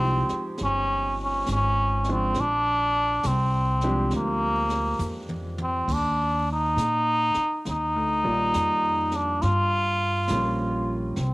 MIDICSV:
0, 0, Header, 1, 6, 480
1, 0, Start_track
1, 0, Tempo, 879765
1, 1289, Time_signature, 4, 2, 24, 8
1, 6186, End_track
2, 0, Start_track
2, 0, Title_t, "Trombone"
2, 0, Program_c, 0, 57
2, 0, Note_on_c, 0, 60, 102
2, 244, Note_off_c, 0, 60, 0
2, 351, Note_on_c, 0, 61, 100
2, 634, Note_off_c, 0, 61, 0
2, 674, Note_on_c, 0, 61, 78
2, 813, Note_off_c, 0, 61, 0
2, 832, Note_on_c, 0, 61, 85
2, 1155, Note_on_c, 0, 60, 85
2, 1163, Note_off_c, 0, 61, 0
2, 1312, Note_on_c, 0, 62, 108
2, 1320, Note_off_c, 0, 60, 0
2, 1784, Note_on_c, 0, 60, 83
2, 1792, Note_off_c, 0, 62, 0
2, 2258, Note_off_c, 0, 60, 0
2, 2270, Note_on_c, 0, 58, 99
2, 2844, Note_off_c, 0, 58, 0
2, 3070, Note_on_c, 0, 60, 86
2, 3236, Note_on_c, 0, 62, 97
2, 3244, Note_off_c, 0, 60, 0
2, 3542, Note_off_c, 0, 62, 0
2, 3562, Note_on_c, 0, 63, 105
2, 4169, Note_off_c, 0, 63, 0
2, 4201, Note_on_c, 0, 63, 102
2, 4996, Note_on_c, 0, 62, 90
2, 5005, Note_off_c, 0, 63, 0
2, 5138, Note_on_c, 0, 65, 119
2, 5146, Note_off_c, 0, 62, 0
2, 5993, Note_off_c, 0, 65, 0
2, 6098, Note_on_c, 0, 60, 103
2, 6186, Note_off_c, 0, 60, 0
2, 6186, End_track
3, 0, Start_track
3, 0, Title_t, "Grand piano"
3, 0, Program_c, 1, 0
3, 0, Control_c, 1, 64, 127
3, 0, Note_on_c, 1, 53, 66
3, 0, Note_on_c, 1, 56, 63
3, 0, Note_on_c, 1, 60, 63
3, 0, Note_on_c, 1, 63, 58
3, 0, Note_on_c, 1, 67, 73
3, 1137, Note_off_c, 1, 60, 0
3, 1137, Note_on_c, 1, 60, 49
3, 1140, Note_off_c, 1, 53, 0
3, 1140, Note_on_c, 1, 53, 57
3, 1141, Note_off_c, 1, 56, 0
3, 1141, Note_on_c, 1, 56, 50
3, 1141, Note_on_c, 1, 62, 50
3, 1145, Note_on_c, 1, 65, 59
3, 1279, Note_off_c, 1, 60, 0
3, 1281, Note_off_c, 1, 53, 0
3, 1281, Note_off_c, 1, 56, 0
3, 1281, Note_off_c, 1, 62, 0
3, 1283, Note_off_c, 1, 65, 0
3, 1295, Control_c, 1, 64, 0
3, 1298, Note_off_c, 1, 63, 0
3, 1298, Note_off_c, 1, 67, 0
3, 1387, Control_c, 1, 64, 127
3, 2093, Note_on_c, 1, 60, 57
3, 2093, Note_on_c, 1, 62, 55
3, 2094, Note_on_c, 1, 53, 59
3, 2095, Note_on_c, 1, 56, 59
3, 2096, Note_on_c, 1, 67, 70
3, 2703, Note_off_c, 1, 60, 0
3, 2704, Note_off_c, 1, 53, 0
3, 2704, Note_off_c, 1, 56, 0
3, 2704, Note_off_c, 1, 62, 0
3, 2705, Note_off_c, 1, 67, 0
3, 3221, Control_c, 1, 64, 0
3, 3333, Control_c, 1, 64, 127
3, 4492, Note_on_c, 1, 55, 49
3, 4493, Note_on_c, 1, 51, 49
3, 4498, Note_on_c, 1, 58, 49
3, 4499, Note_on_c, 1, 65, 64
3, 4499, Note_on_c, 1, 74, 50
3, 4639, Note_off_c, 1, 55, 0
3, 4640, Note_off_c, 1, 51, 0
3, 4642, Note_off_c, 1, 58, 0
3, 4643, Note_off_c, 1, 65, 0
3, 4643, Note_off_c, 1, 74, 0
3, 5142, Control_c, 1, 64, 0
3, 5226, Control_c, 1, 64, 127
3, 5620, Note_on_c, 1, 53, 59
3, 5622, Note_on_c, 1, 55, 51
3, 5623, Note_on_c, 1, 58, 56
3, 5624, Note_on_c, 1, 61, 52
3, 5625, Note_on_c, 1, 65, 64
3, 5900, Note_off_c, 1, 53, 0
3, 5901, Note_off_c, 1, 55, 0
3, 5902, Note_off_c, 1, 58, 0
3, 5902, Note_off_c, 1, 61, 0
3, 5902, Note_off_c, 1, 65, 0
3, 6097, Control_c, 1, 64, 0
3, 6180, Control_c, 1, 64, 127
3, 6186, End_track
4, 0, Start_track
4, 0, Title_t, "Upright bass"
4, 0, Program_c, 2, 32
4, 0, Note_on_c, 2, 36, 88
4, 139, Note_off_c, 2, 36, 0
4, 333, Note_on_c, 2, 31, 69
4, 797, Note_off_c, 2, 31, 0
4, 810, Note_on_c, 2, 32, 74
4, 1276, Note_off_c, 2, 32, 0
4, 1292, Note_on_c, 2, 34, 79
4, 1757, Note_off_c, 2, 34, 0
4, 1771, Note_on_c, 2, 36, 88
4, 2237, Note_off_c, 2, 36, 0
4, 2245, Note_on_c, 2, 38, 72
4, 2716, Note_off_c, 2, 38, 0
4, 2724, Note_on_c, 2, 41, 70
4, 3195, Note_off_c, 2, 41, 0
4, 3206, Note_on_c, 2, 39, 79
4, 3677, Note_off_c, 2, 39, 0
4, 3691, Note_on_c, 2, 46, 80
4, 3988, Note_off_c, 2, 46, 0
4, 4184, Note_on_c, 2, 39, 71
4, 4342, Note_off_c, 2, 39, 0
4, 4342, Note_on_c, 2, 38, 46
4, 4497, Note_off_c, 2, 38, 0
4, 4500, Note_on_c, 2, 34, 63
4, 4647, Note_off_c, 2, 34, 0
4, 4661, Note_on_c, 2, 41, 74
4, 5123, Note_off_c, 2, 41, 0
4, 5144, Note_on_c, 2, 43, 81
4, 5604, Note_off_c, 2, 43, 0
4, 5623, Note_on_c, 2, 34, 83
4, 6082, Note_off_c, 2, 34, 0
4, 6094, Note_on_c, 2, 36, 75
4, 6186, Note_off_c, 2, 36, 0
4, 6186, End_track
5, 0, Start_track
5, 0, Title_t, "Muted upright bass strokes"
5, 168, Note_on_c, 9, 29, 35
5, 222, Note_off_c, 9, 29, 0
5, 4014, Note_on_c, 9, 29, 35
5, 4068, Note_off_c, 9, 29, 0
5, 6186, End_track
6, 0, Start_track
6, 0, Title_t, "Drums"
6, 158, Note_on_c, 9, 38, 36
6, 212, Note_off_c, 9, 38, 0
6, 314, Note_on_c, 9, 25, 48
6, 314, Note_on_c, 9, 38, 41
6, 369, Note_off_c, 9, 38, 0
6, 798, Note_on_c, 9, 38, 56
6, 798, Note_on_c, 9, 44, 46
6, 853, Note_off_c, 9, 38, 0
6, 853, Note_off_c, 9, 44, 0
6, 1114, Note_on_c, 9, 38, 35
6, 1168, Note_off_c, 9, 38, 0
6, 1279, Note_off_c, 9, 25, 0
6, 1279, Note_on_c, 9, 25, 45
6, 1279, Note_on_c, 9, 38, 39
6, 1333, Note_off_c, 9, 38, 0
6, 1764, Note_on_c, 9, 38, 55
6, 1764, Note_on_c, 9, 44, 53
6, 1819, Note_off_c, 9, 38, 0
6, 1819, Note_off_c, 9, 44, 0
6, 2079, Note_on_c, 9, 38, 34
6, 2134, Note_off_c, 9, 38, 0
6, 2241, Note_off_c, 9, 25, 0
6, 2241, Note_on_c, 9, 25, 48
6, 2241, Note_on_c, 9, 38, 40
6, 2295, Note_off_c, 9, 38, 0
6, 2563, Note_on_c, 9, 38, 52
6, 2618, Note_off_c, 9, 38, 0
6, 2722, Note_on_c, 9, 44, 62
6, 2722, Note_on_c, 9, 48, 45
6, 2777, Note_off_c, 9, 44, 0
6, 2777, Note_off_c, 9, 48, 0
6, 2885, Note_on_c, 9, 48, 52
6, 2940, Note_off_c, 9, 48, 0
6, 3046, Note_on_c, 9, 48, 69
6, 3100, Note_off_c, 9, 48, 0
6, 3207, Note_on_c, 9, 36, 56
6, 3210, Note_off_c, 9, 25, 0
6, 3210, Note_on_c, 9, 25, 38
6, 3210, Note_on_c, 9, 38, 39
6, 3210, Note_on_c, 9, 49, 59
6, 3262, Note_off_c, 9, 36, 0
6, 3265, Note_off_c, 9, 38, 0
6, 3265, Note_off_c, 9, 49, 0
6, 3698, Note_on_c, 9, 38, 51
6, 3698, Note_on_c, 9, 44, 53
6, 3752, Note_off_c, 9, 38, 0
6, 3752, Note_off_c, 9, 44, 0
6, 4006, Note_on_c, 9, 38, 39
6, 4061, Note_off_c, 9, 38, 0
6, 4175, Note_off_c, 9, 25, 0
6, 4175, Note_on_c, 9, 25, 46
6, 4175, Note_on_c, 9, 38, 39
6, 4230, Note_off_c, 9, 38, 0
6, 4659, Note_on_c, 9, 38, 59
6, 4659, Note_on_c, 9, 44, 55
6, 4713, Note_off_c, 9, 38, 0
6, 4713, Note_off_c, 9, 44, 0
6, 4973, Note_on_c, 9, 38, 35
6, 5027, Note_off_c, 9, 38, 0
6, 5138, Note_off_c, 9, 25, 0
6, 5138, Note_on_c, 9, 25, 40
6, 5138, Note_on_c, 9, 38, 33
6, 5193, Note_off_c, 9, 38, 0
6, 5607, Note_on_c, 9, 38, 61
6, 5607, Note_on_c, 9, 44, 55
6, 5662, Note_off_c, 9, 38, 0
6, 5662, Note_off_c, 9, 44, 0
6, 6090, Note_off_c, 9, 25, 0
6, 6090, Note_on_c, 9, 25, 39
6, 6090, Note_on_c, 9, 38, 43
6, 6144, Note_off_c, 9, 38, 0
6, 6186, Note_off_c, 9, 25, 0
6, 6186, End_track
0, 0, End_of_file